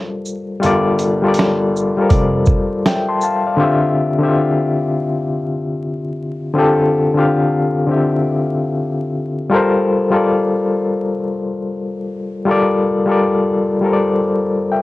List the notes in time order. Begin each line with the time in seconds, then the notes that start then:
Already playing: G3 F4 A4 A#4 D5
0.25 shaker
0.60 G1 G3 F4 A4, closed hi-hat
0.64 A#4 D5
0.99 closed hi-hat, shaker
1.22 G3 F4 A4
1.26 A#4 D5
1.34 closed hi-hat
1.39 snare
1.76 shaker
1.97 G3 F4 A4
2.01 A#4 C5
2.09 F1 D5, kick, closed hi-hat
2.46 kick, shaker
2.86 E5 G5, snare, closed hi-hat
3.09 A5 C6
3.21 F5 A5, shaker
3.46 D5 F5
3.57 D3 C4 F4
3.61 G4 E5
4.19 D3 C4 E4
4.23 G4 E5
4.28 F4
6.54 D3 C4 F4
6.58 G4 A4
7.14 D3 C4 F4
7.19 G4 F5
7.87 D3 C4 E4
7.92 G4 E5
7.97 F4
9.50 G3 F4 A4
9.54 A#4 C5
10.10 G3 F4 A4 A#4
10.16 D5
12.45 G3 F4 A4
12.50 A#4 D5
13.06 G3 F4 A4
13.10 A#4 D5
13.81 G3 F4 A4
13.86 A#4 C5
13.93 D5
14.71 E5 G5